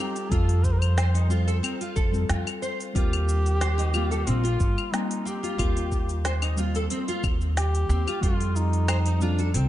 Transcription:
Already playing: synth keys G3 C4 F4 A4
0.00 nylon-string guitar C4, duduk G4
0.16 open hi-hat, shaker
0.29 upright bass F2, synth keys G3 C4 F4 A4, nylon-string guitar F4, duduk A4, kick, open hi-hat, shaker
0.49 open hi-hat, shaker
0.64 duduk C5, kick, shaker
0.72 duduk A#4
0.79 duduk C5, open hi-hat, claves, shaker
0.98 nylon-string guitar C5, snare, open hi-hat, shaker
1.14 nylon-string guitar D#4, open hi-hat, shaker
1.28 synth keys G3 C4 F4 A4, nylon-string guitar F4, shaker
1.48 nylon-string guitar A4, open hi-hat, shaker
1.63 nylon-string guitar C4, open hi-hat, claves, shaker
1.81 nylon-string guitar F4, open hi-hat, shaker
1.96 upright bass F2, nylon-string guitar A4, kick, shaker
2.12 synth keys G3 C4 F4, shaker
2.16 synth keys A4
2.29 upright bass F2, nylon-string guitar F4, snare, open hi-hat, shaker
2.47 open hi-hat, claves, shaker
2.62 nylon-string guitar C5, shaker
2.80 open hi-hat, shaker
2.93 upright bass D#2, synth keys G3 C4 F4, nylon-string guitar F4, duduk G4, kick, open hi-hat, shaker
2.97 synth keys A#4
3.13 open hi-hat, claves, shaker
3.29 shaker
3.46 open hi-hat, shaker
3.61 nylon-string guitar C5, snare, open hi-hat, shaker
3.78 nylon-string guitar D#4, open hi-hat, shaker
3.93 synth keys G3 A#3 C4 F4, nylon-string guitar F4, claves, shaker
4.11 nylon-string guitar A4, open hi-hat, shaker
4.27 upright bass A#1, nylon-string guitar C4, duduk F4, open hi-hat, shaker
4.44 nylon-string guitar F4, open hi-hat, shaker
4.60 upright bass G2, kick, shaker
4.78 claves, shaker
4.92 synth keys G3 A#3 C4 F4, duduk D#4, snare, open hi-hat, shaker
5.11 open hi-hat, shaker
5.25 nylon-string guitar C4, duduk G4, shaker
5.43 nylon-string guitar F4, open hi-hat, shaker
5.57 upright bass D#2, synth keys G3 C4 F4 A#4, nylon-string guitar F4, kick, open hi-hat, claves, shaker
5.77 open hi-hat, shaker
5.92 kick, shaker
6.09 open hi-hat, shaker
6.25 nylon-string guitar C5, snare, open hi-hat, shaker
6.42 nylon-string guitar D#4, open hi-hat, claves, shaker
6.56 synth keys G3 A#3 C4 F4, nylon-string guitar F4, shaker
6.75 nylon-string guitar A4, open hi-hat, shaker
6.90 nylon-string guitar C4, open hi-hat, shaker
7.08 nylon-string guitar F4, open hi-hat, shaker
7.24 upright bass D#2, kick, claves, shaker
7.41 shaker
7.57 duduk G4, snare, open hi-hat, shaker
7.75 open hi-hat, shaker
7.89 upright bass D#2, nylon-string guitar C4, shaker
8.07 nylon-string guitar F4, open hi-hat, claves, shaker
8.21 upright bass F2, synth keys G3 C4 F4 A4, nylon-string guitar F4, duduk F4, kick, open hi-hat, shaker
8.41 open hi-hat, shaker
8.56 duduk D#4, shaker
8.73 open hi-hat, shaker
8.88 nylon-string guitar C5, snare, open hi-hat, claves, shaker
9.06 nylon-string guitar D#4, open hi-hat, shaker
9.20 synth keys G3 C4 F4, duduk D4, nylon-string guitar F4, shaker
9.24 synth keys A4
9.39 nylon-string guitar A4, open hi-hat, shaker
9.54 upright bass C2, duduk C4, nylon-string guitar C4, open hi-hat, shaker

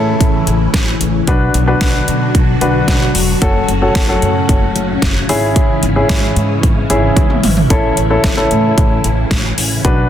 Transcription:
Already playing: upright bass A2, string machine A2 C#3 E3 C#4 E4, grand piano C#4 E4 A4
0.21 upright bass A1, kick, closed hi-hat
0.47 upright bass A1, closed hi-hat
0.74 upright bass A1, kick, snare, closed hi-hat
1.01 upright bass A1, closed hi-hat
1.27 upright bass B1, string machine B2 D3 F#3 D4 F#4, grand piano D4 F#4 B4, kick, closed hi-hat
1.54 upright bass B1, closed hi-hat
1.68 grand piano D4 F#4 B4
1.81 upright bass B1, kick, snare, closed hi-hat
2.08 upright bass B2, closed hi-hat
2.35 upright bass B1, kick, closed hi-hat
2.61 upright bass B1, grand piano D4 F#4 B4, closed hi-hat
2.88 upright bass B1, kick, snare, closed hi-hat
3.15 upright bass E1, open hi-hat
3.42 upright bass F#1, string machine A2 C#3 C#4, grand piano C#4 F#4 A4, kick, closed hi-hat
3.68 upright bass F#1, closed hi-hat
3.82 grand piano C#4 F#4 A4
3.95 upright bass F#1, kick, snare, closed hi-hat
4.09 grand piano C#4 F#4 A4
4.22 upright bass F#2, closed hi-hat
4.49 upright bass F#1, kick, closed hi-hat
4.76 upright bass F#1, closed hi-hat
5.02 upright bass F#1, kick, snare, closed hi-hat
5.29 upright bass G#1, string machine G#2 E3 E4, grand piano C#4 E4 G#4, open hi-hat
5.56 kick, closed hi-hat
5.83 upright bass G#1, closed hi-hat
5.96 grand piano C#4 E4 G#4
6.09 upright bass G#1, kick, snare, closed hi-hat
6.36 upright bass G#2, closed hi-hat
6.63 upright bass G#1, kick, closed hi-hat
6.90 upright bass G#1, grand piano C#4 E4 G#4, closed hi-hat
7.17 upright bass G#1, kick, closed hi-hat, high tom
7.30 mid tom
7.43 upright bass G#1, mid tom, open hi-hat
7.57 floor tom
7.70 upright bass A1, string machine A2, grand piano C#4 E4 A4, kick, closed hi-hat
7.97 upright bass A1, closed hi-hat
8.10 grand piano C#4 E4 A4
8.24 upright bass A1, kick, snare, closed hi-hat
8.37 grand piano C#4 E4 A4
8.51 upright bass A2, closed hi-hat
8.78 upright bass A1, kick, closed hi-hat
9.04 upright bass A1, closed hi-hat
9.31 upright bass A1, kick, snare, closed hi-hat
9.58 upright bass A1, open hi-hat
9.85 upright bass B1, string machine B2 D3 F#3 D4 F#4, grand piano D4 F#4 B4, kick, closed hi-hat

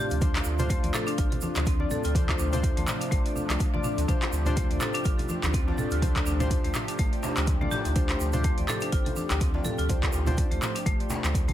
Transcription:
Already playing: analog synth pad C3 F3 A3 D4 F4, synth keys D4 F4 D5
0.10 sub bass D2, closed hi-hat, shaker
0.21 synth keys D4 F4 C5, marimba D4, kick, closed hi-hat, high conga, low conga, shaker
0.35 clap, closed hi-hat, muted conga
0.44 sub bass D2, shaker
0.59 synth keys D4 F4 C5, closed hi-hat, mid tom, low conga, shaker
0.70 marimba A3, kick, closed hi-hat, shaker
0.83 sub bass D2, marimba D5, closed hi-hat, muted conga, high conga
0.93 marimba A4, clap, mid tom, shaker
1.07 marimba D4, closed hi-hat, shaker
1.18 sub bass A1, marimba F4, kick, closed hi-hat, muted conga, shaker
1.32 closed hi-hat, low conga
1.41 marimba D4, high conga, shaker
1.55 sub bass D2, clap, closed hi-hat, muted conga, shaker
1.66 marimba C4, kick, closed hi-hat, shaker
1.80 synth keys D4 F4 D5, high conga
1.91 marimba A4, mid tom, muted conga, low conga, shaker
2.04 sub bass D2, marimba F4, closed hi-hat, shaker
2.15 synth keys D4 F4 C5, kick, closed hi-hat, high conga, low conga, shaker
2.29 kick, clap, closed hi-hat, muted conga
2.39 sub bass D2, marimba D4, shaker
2.53 synth keys D4 F4 C5, closed hi-hat, mid tom, low conga, shaker
2.63 kick, closed hi-hat, shaker
2.77 sub bass D2, marimba A3, closed hi-hat, muted conga, high conga
2.87 clap, mid tom, shaker
3.01 marimba D4, closed hi-hat, shaker
3.11 sub bass A1, marimba A3, kick, closed hi-hat, muted conga, shaker
3.25 marimba D5, closed hi-hat
3.36 marimba D4, low conga, shaker
3.49 sub bass C2, clap, closed hi-hat, muted conga, shaker
3.60 kick, closed hi-hat, high conga, shaker
3.74 synth keys D4 F4 D5, marimba D5, high conga, low conga
3.84 marimba D4, mid tom, muted conga, shaker
3.97 sub bass D2, closed hi-hat, shaker
4.08 synth keys D4 F4 C5, marimba D4, analog synth pad G4, kick, closed hi-hat, high conga, low conga, shaker
4.22 clap, closed hi-hat, djembe slap, muted conga
4.32 sub bass D2, shaker
4.46 synth keys D4 F4 C5, closed hi-hat, mid tom, low conga, shaker
4.57 marimba A3, kick, closed hi-hat, shaker
4.70 sub bass D2, marimba D5, closed hi-hat, muted conga, high conga
4.80 marimba A4, clap, mid tom, djembe tone, shaker
4.94 marimba D4, closed hi-hat, shaker
5.04 sub bass A1, marimba F4, kick, closed hi-hat, muted conga, shaker
5.19 closed hi-hat, djembe tone, low conga
5.29 marimba D4, high conga, shaker
5.43 sub bass D2, clap, closed hi-hat, muted conga, djembe bass, shaker
5.54 marimba C4, kick, closed hi-hat, shaker
5.68 synth keys D4 F4 D5, djembe slap, high conga
5.78 marimba A4, mid tom, muted conga, low conga, shaker
5.91 sub bass D2, marimba F4, closed hi-hat, shaker
6.02 synth keys D4 F4 C5, kick, closed hi-hat, high conga, low conga, shaker
6.16 kick, clap, closed hi-hat, muted conga
6.26 sub bass D2, marimba D4, djembe tone, shaker
6.40 synth keys D4 F4 C5, closed hi-hat, mid tom, low conga, djembe bass, shaker
6.50 kick, closed hi-hat, shaker
6.64 sub bass D2, marimba A3, closed hi-hat, muted conga, high conga
6.74 clap, mid tom, shaker
6.88 marimba D4, closed hi-hat, shaker
6.98 sub bass A1, marimba A3, kick, closed hi-hat, muted conga, shaker
7.12 marimba D5, closed hi-hat
7.23 marimba D4, djembe slap, djembe tone, low conga, shaker
7.36 sub bass D2, clap, closed hi-hat, muted conga, shaker
7.47 kick, closed hi-hat, high conga, shaker
7.61 marimba A3, synth keys D4 F4 D5, high conga, low conga
7.71 marimba G4, mid tom, muted conga, djembe slap, shaker
7.85 sub bass D2, closed hi-hat, djembe tone, djembe bass, shaker
7.96 marimba D4, synth keys D4 F4 C5, kick, closed hi-hat, high conga, low conga, shaker
8.09 clap, closed hi-hat, muted conga, djembe slap
8.20 sub bass D2, shaker
8.33 synth keys D4 F4 C5, closed hi-hat, mid tom, low conga, shaker
8.44 marimba A3, kick, closed hi-hat, shaker
8.57 sub bass D2, marimba D5, closed hi-hat, muted conga, high conga
8.68 marimba A4, clap, mid tom, djembe tone, shaker
8.81 marimba D4, closed hi-hat, shaker
8.92 sub bass A1, marimba F4, kick, closed hi-hat, muted conga, shaker
9.06 closed hi-hat, djembe tone, low conga
9.16 marimba D4, high conga, shaker
9.30 sub bass D2, clap, closed hi-hat, muted conga, djembe bass, shaker
9.40 marimba C4, kick, closed hi-hat, shaker
9.54 synth keys D4 F4 D5, djembe slap, high conga
9.65 marimba A4, mid tom, muted conga, low conga, shaker
9.78 sub bass D2, marimba F4, closed hi-hat, shaker
9.89 synth keys D4 F4 C5, kick, closed hi-hat, high conga, low conga, shaker
10.03 kick, clap, closed hi-hat, muted conga, djembe slap
10.13 sub bass D2, marimba D4, djembe tone, shaker
10.26 synth keys D4 F4 C5, closed hi-hat, mid tom, low conga, djembe bass, shaker
10.37 kick, closed hi-hat, shaker
10.51 sub bass D2, marimba A3, closed hi-hat, muted conga, high conga
10.62 clap, mid tom, djembe tone, shaker
10.75 marimba D4, closed hi-hat, shaker
10.86 sub bass A1, marimba A3, kick, closed hi-hat, muted conga, high conga, shaker
11.00 marimba D5, closed hi-hat
11.09 marimba D4, djembe slap, djembe tone, low conga, shaker
11.24 sub bass D2, clap, closed hi-hat, muted conga, shaker
11.35 kick, closed hi-hat, high conga, shaker
11.48 marimba A3, closed hi-hat, high conga, low conga

